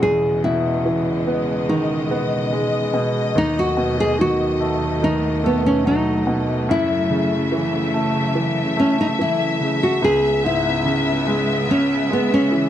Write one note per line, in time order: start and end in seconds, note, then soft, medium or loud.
0.00 3.32 E2 soft
0.00 3.32 B2 medium
0.00 3.32 C#3 medium
0.00 3.33 G#3 medium
0.00 0.41 G#4 medium
0.00 6.66 D#5 medium
0.44 2.07 B2 soft
0.44 1.69 E4 medium
0.86 2.48 E3 soft
1.27 2.10 B3 soft
1.69 3.32 D#3 soft
1.69 2.90 D#4 medium
2.11 3.32 B3 soft
2.52 3.33 G#3 soft
2.94 3.34 B2 soft
3.35 6.65 D#2 soft
3.35 6.66 D#2 medium
3.35 6.66 B2 medium
3.35 9.99 F#3 medium
3.35 9.99 A3 medium
3.35 3.58 D#4 medium
3.59 3.97 F#4 medium
3.77 5.40 B2 soft
4.00 4.21 G#4 medium
4.19 5.01 D#3 soft
4.19 5.06 F#4 medium
4.60 5.42 A3 soft
5.03 6.65 D#3 soft
5.03 5.46 D#4 medium
5.44 6.65 A3 soft
5.44 5.64 B3 medium
5.66 5.85 C#4 medium
5.85 6.66 F#3 soft
5.85 6.70 D#4 medium
6.27 6.68 B2 soft
6.69 9.98 F#2 soft
6.69 9.99 C#3 medium
6.69 8.79 E4 medium
6.69 12.69 E5 medium
7.10 8.73 C#3 soft
7.52 8.34 E3 soft
7.94 8.75 A3 soft
8.35 9.17 E3 soft
8.77 9.98 A3 soft
8.77 8.98 C#4 medium
9.01 9.06 D#4 medium
9.19 10.00 E3 soft
9.19 9.85 E4 medium
9.61 10.01 C#3 soft
9.83 10.04 F#4 medium
10.02 12.69 C#2 soft
10.02 12.69 C#3 medium
10.02 12.69 G#3 medium
10.02 12.69 B3 medium
10.02 10.42 G#4 medium
10.44 12.07 G#2 soft
10.44 11.66 E4 medium
10.85 11.67 C#3 soft
11.27 12.09 G#3 soft
11.69 12.69 C#3 soft
11.69 12.13 C#4 medium
12.10 12.69 G#3 soft
12.10 12.33 B3 medium
12.34 12.69 C#4 medium
12.52 12.69 E3 soft